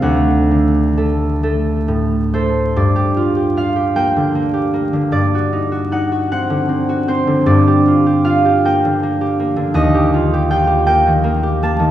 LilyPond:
\new Staff \with { instrumentName = "Harp" } { \time 6/8 \key g \minor \tempo 4. = 51 << { <f'' fis'' a''>2~ <f'' fis'' a''>8 c''8 | d''4 f''8 g''4. | d''4 fis''8 fis''4 c''8 | d''4 f''8 g''4. |
ees''4 g''8 g''4 a''8 | } \\ { <d, a a'>8 d8 <a a'>8 <a a'>8 a,8 <a a'>8 | g,16 g'16 f'16 g'16 f'16 g'16 bes16 d16 bes16 g'16 bes16 d16 | g,16 fis'16 ees'16 fis'16 ees'16 fis'16 c'16 d16 c'16 fis'16 c'16 d16 | g,16 g'16 f'16 g'16 f'16 g'16 bes16 d16 bes16 g'16 bes16 d16 |
ees,16 g'16 f'16 g'16 f'16 g'16 bes16 ees16 bes16 g'16 bes16 ees16 | } >> }